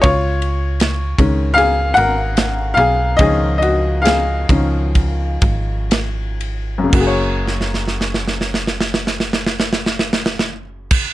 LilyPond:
<<
  \new Staff \with { instrumentName = "Upright piano" } { \time 4/4 \key fis \major \tempo 4 = 65 <eis' cis''>2 <gis' eis''>8 <ais' fis''>4 <gis' eis''>8 | <gis' dis''>8 <fis' dis''>8 <gis' eis''>4 r2 | r1 | }
  \new Staff \with { instrumentName = "Upright piano" } { \time 4/4 \key fis \major r4. <dis gis cis'>2~ <dis gis cis'>8 | <dis eis cis' eis'>4. <dis eis cis'>8 r2 | <fis, cis ais fis' gis' cis''>1 | }
  \new Staff \with { instrumentName = "FM bass" } { \clef bass \time 4/4 \key fis \major cis,4. cis,4 gis,,4 b,,8 | cis,4. cis,4 gis,,4. | fis,,1 | }
  \new DrumStaff \with { instrumentName = "Drums" } \drummode { \time 4/4 <bd cymr>8 cymr8 <cymr sn>8 <bd cymr>8 cymr8 cymr8 <cymr sn>8 cymr8 | <bd cymr>8 cymr8 <cymr sn>8 <bd cymr>8 <bd cymr>8 <bd cymr>8 <cymr sn>8 cymr8 | <cymc bd>8 sn32 sn32 sn32 sn32 sn32 sn32 sn32 sn32 sn32 sn32 sn32 sn32 sn32 sn32 sn32 sn32 sn32 sn32 sn32 sn32 sn32 sn32 sn8 <cymc bd>16 | }
>>